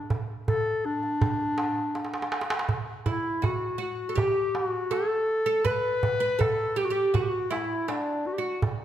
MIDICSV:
0, 0, Header, 1, 4, 480
1, 0, Start_track
1, 0, Tempo, 740741
1, 1746, Time_signature, 4, 2, 24, 8
1, 5734, End_track
2, 0, Start_track
2, 0, Title_t, "Oud"
2, 0, Program_c, 0, 24
2, 1982, Note_on_c, 0, 64, 56
2, 2214, Note_off_c, 0, 64, 0
2, 2217, Note_on_c, 0, 66, 54
2, 2442, Note_off_c, 0, 66, 0
2, 2450, Note_on_c, 0, 66, 69
2, 2649, Note_off_c, 0, 66, 0
2, 2651, Note_on_c, 0, 69, 48
2, 2690, Note_off_c, 0, 69, 0
2, 2692, Note_on_c, 0, 67, 67
2, 3178, Note_off_c, 0, 67, 0
2, 3181, Note_on_c, 0, 69, 70
2, 3530, Note_off_c, 0, 69, 0
2, 3538, Note_on_c, 0, 69, 75
2, 3655, Note_off_c, 0, 69, 0
2, 3658, Note_on_c, 0, 71, 80
2, 4011, Note_off_c, 0, 71, 0
2, 4019, Note_on_c, 0, 71, 74
2, 4136, Note_off_c, 0, 71, 0
2, 4139, Note_on_c, 0, 69, 68
2, 4379, Note_off_c, 0, 69, 0
2, 4382, Note_on_c, 0, 67, 74
2, 4466, Note_off_c, 0, 67, 0
2, 4474, Note_on_c, 0, 67, 66
2, 4623, Note_off_c, 0, 67, 0
2, 4626, Note_on_c, 0, 66, 63
2, 4861, Note_off_c, 0, 66, 0
2, 4863, Note_on_c, 0, 64, 69
2, 5088, Note_off_c, 0, 64, 0
2, 5108, Note_on_c, 0, 62, 64
2, 5433, Note_on_c, 0, 66, 59
2, 5448, Note_off_c, 0, 62, 0
2, 5574, Note_off_c, 0, 66, 0
2, 5734, End_track
3, 0, Start_track
3, 0, Title_t, "Clarinet"
3, 0, Program_c, 1, 71
3, 0, Note_on_c, 1, 62, 90
3, 113, Note_off_c, 1, 62, 0
3, 309, Note_on_c, 1, 69, 90
3, 552, Note_on_c, 1, 62, 87
3, 562, Note_off_c, 1, 69, 0
3, 1653, Note_off_c, 1, 62, 0
3, 2001, Note_on_c, 1, 64, 70
3, 2240, Note_on_c, 1, 66, 75
3, 2249, Note_off_c, 1, 64, 0
3, 2473, Note_off_c, 1, 66, 0
3, 2476, Note_on_c, 1, 66, 70
3, 2715, Note_on_c, 1, 67, 80
3, 2725, Note_off_c, 1, 66, 0
3, 2955, Note_off_c, 1, 67, 0
3, 2955, Note_on_c, 1, 67, 76
3, 3026, Note_off_c, 1, 67, 0
3, 3026, Note_on_c, 1, 66, 76
3, 3191, Note_on_c, 1, 69, 87
3, 3201, Note_off_c, 1, 66, 0
3, 3673, Note_on_c, 1, 71, 98
3, 3682, Note_off_c, 1, 69, 0
3, 4155, Note_on_c, 1, 69, 86
3, 4165, Note_off_c, 1, 71, 0
3, 4396, Note_on_c, 1, 67, 76
3, 4406, Note_off_c, 1, 69, 0
3, 4436, Note_on_c, 1, 66, 71
3, 4446, Note_off_c, 1, 67, 0
3, 4479, Note_on_c, 1, 67, 82
3, 4489, Note_off_c, 1, 66, 0
3, 4633, Note_on_c, 1, 66, 76
3, 4643, Note_off_c, 1, 67, 0
3, 4673, Note_on_c, 1, 67, 63
3, 4683, Note_off_c, 1, 66, 0
3, 4726, Note_on_c, 1, 66, 78
3, 4736, Note_off_c, 1, 67, 0
3, 4866, Note_on_c, 1, 64, 70
3, 4875, Note_off_c, 1, 66, 0
3, 5111, Note_on_c, 1, 62, 70
3, 5121, Note_off_c, 1, 64, 0
3, 5357, Note_on_c, 1, 66, 71
3, 5366, Note_off_c, 1, 62, 0
3, 5398, Note_on_c, 1, 67, 56
3, 5408, Note_off_c, 1, 66, 0
3, 5440, Note_on_c, 1, 66, 66
3, 5450, Note_off_c, 1, 67, 0
3, 5589, Note_off_c, 1, 66, 0
3, 5734, End_track
4, 0, Start_track
4, 0, Title_t, "Darbuka"
4, 67, Note_on_c, 9, 64, 76
4, 132, Note_off_c, 9, 64, 0
4, 311, Note_on_c, 9, 64, 77
4, 376, Note_off_c, 9, 64, 0
4, 549, Note_on_c, 9, 62, 26
4, 614, Note_off_c, 9, 62, 0
4, 668, Note_on_c, 9, 62, 27
4, 733, Note_off_c, 9, 62, 0
4, 787, Note_on_c, 9, 64, 84
4, 852, Note_off_c, 9, 64, 0
4, 1022, Note_on_c, 9, 63, 67
4, 1087, Note_off_c, 9, 63, 0
4, 1265, Note_on_c, 9, 63, 47
4, 1326, Note_on_c, 9, 62, 58
4, 1329, Note_off_c, 9, 63, 0
4, 1384, Note_on_c, 9, 63, 60
4, 1390, Note_off_c, 9, 62, 0
4, 1441, Note_on_c, 9, 62, 72
4, 1449, Note_off_c, 9, 63, 0
4, 1503, Note_on_c, 9, 63, 73
4, 1506, Note_off_c, 9, 62, 0
4, 1564, Note_on_c, 9, 62, 80
4, 1567, Note_off_c, 9, 63, 0
4, 1622, Note_on_c, 9, 63, 88
4, 1629, Note_off_c, 9, 62, 0
4, 1680, Note_on_c, 9, 62, 88
4, 1687, Note_off_c, 9, 63, 0
4, 1741, Note_on_c, 9, 64, 70
4, 1745, Note_off_c, 9, 62, 0
4, 1806, Note_off_c, 9, 64, 0
4, 1983, Note_on_c, 9, 64, 72
4, 2047, Note_off_c, 9, 64, 0
4, 2226, Note_on_c, 9, 64, 76
4, 2291, Note_off_c, 9, 64, 0
4, 2706, Note_on_c, 9, 64, 79
4, 2771, Note_off_c, 9, 64, 0
4, 2947, Note_on_c, 9, 63, 54
4, 3012, Note_off_c, 9, 63, 0
4, 3187, Note_on_c, 9, 63, 46
4, 3252, Note_off_c, 9, 63, 0
4, 3429, Note_on_c, 9, 62, 22
4, 3494, Note_off_c, 9, 62, 0
4, 3663, Note_on_c, 9, 64, 67
4, 3728, Note_off_c, 9, 64, 0
4, 3907, Note_on_c, 9, 64, 78
4, 3972, Note_off_c, 9, 64, 0
4, 4151, Note_on_c, 9, 64, 80
4, 4216, Note_off_c, 9, 64, 0
4, 4630, Note_on_c, 9, 64, 81
4, 4695, Note_off_c, 9, 64, 0
4, 4872, Note_on_c, 9, 63, 61
4, 4937, Note_off_c, 9, 63, 0
4, 5110, Note_on_c, 9, 63, 60
4, 5175, Note_off_c, 9, 63, 0
4, 5348, Note_on_c, 9, 62, 25
4, 5413, Note_off_c, 9, 62, 0
4, 5588, Note_on_c, 9, 64, 86
4, 5653, Note_off_c, 9, 64, 0
4, 5734, End_track
0, 0, End_of_file